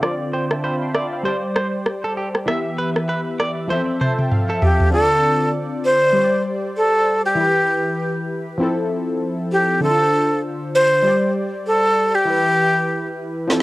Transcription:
0.00 synth keys D3 C4 F4, clean electric guitar D5, cross-stick
0.05 synth keys D5
0.33 clean electric guitar C5, synth keys D5 G5
0.51 synth keys E5 A5, cross-stick
0.64 clean electric guitar C5, synth keys F5 B5
0.82 synth keys G5 C6
0.95 clean electric guitar D5, synth keys E5 A5, cross-stick
1.13 synth keys C5 F5
1.23 synth keys G3 G4 C5, clean electric guitar C5
1.28 synth keys D5
1.56 clean electric guitar C5, cross-stick
1.86 cross-stick
2.04 clean electric guitar A4
2.17 clean electric guitar G4
2.35 cross-stick
2.46 synth keys E3 B3 G4, clean electric guitar E5, cross-stick
2.51 synth keys E5
2.78 clean electric guitar B4
2.96 cross-stick
3.09 clean electric guitar B4
3.40 clean electric guitar D5, cross-stick
3.68 synth keys F3 C4 A4, clean electric guitar C5, high tom
3.73 synth keys E5
4.01 clean electric guitar C5, synth keys A5, mid tom
4.19 synth keys G5, mid tom
4.31 synth keys F5, mid tom
4.49 clean electric guitar A4, synth keys E5
4.62 clean electric guitar G4, flute G4, synth keys E5, floor tom
4.80 floor tom
4.90 synth keys D3 C4 F4, flute A4
4.95 synth keys D5
5.85 flute C5
6.13 synth keys G3 G4 C5
6.18 synth keys C#5
6.24 synth keys D5
6.77 flute A4
7.25 flute G4
7.35 synth keys E3 E4 G4
7.40 synth keys B4
8.58 synth keys F3 C4 E4
8.63 synth keys A4
9.52 flute G4
9.80 synth keys D3 D4 E4, flute A4
9.85 synth keys C5
9.90 synth keys F4
10.75 flute C5
11.03 synth keys G3 G4 C5
11.08 synth keys D5
11.67 flute A4
12.15 flute G4
12.25 synth keys E3 E4 G4
12.30 synth keys B4
13.47 synth keys F3 C4 E4, snare
13.52 synth keys A4

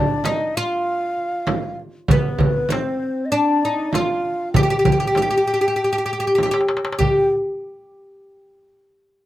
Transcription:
Already playing: oud D4, ney D5
0.24 oud D#4, ney D#5, darbuka tek, frame drum
0.56 oud F4, ney F5
1.18 darbuka ka
1.33 darbuka ka
1.47 darbuka tek, frame drum
1.79 darbuka ka
2.08 oud B3, ney B4, frame drum, darbuka dum
2.38 frame drum, darbuka dum
2.69 oud C4, ney C5, darbuka tek, frame drum
3.25 ney D#5
3.30 oud D4, ney D5
3.65 oud D#4
3.79 darbuka ka
3.92 oud F4, ney F5, darbuka tek, frame drum
4.25 darbuka ka
4.53 oud G4, ney G5, frame drum, darbuka dum
4.63 oud G4
4.70 oud G4
4.79 oud G4
4.85 oud G4, darbuka dum, frame drum
4.92 oud G4
5.00 oud G4
5.07 oud G4
5.15 oud G4, darbuka tek, frame drum
5.22 oud G4
5.31 oud G4
5.38 oud G4
5.46 oud G4, darbuka ka
5.54 oud G4
5.61 oud G4
5.68 oud G4
5.76 oud G4
5.84 oud G4
5.93 oud G4
5.98 oud G4
6.06 oud G4, darbuka ka
6.13 oud G4
6.20 oud G4, darbuka ka
6.27 oud G4
6.35 oud G4, darbuka tek, frame drum
6.43 oud G4, darbuka ka
6.51 oud G4, darbuka tek
6.61 darbuka ka
6.68 darbuka tek
6.77 darbuka ka
6.85 darbuka tek
6.92 darbuka ka
6.99 oud G4, ney G5, frame drum, darbuka dum

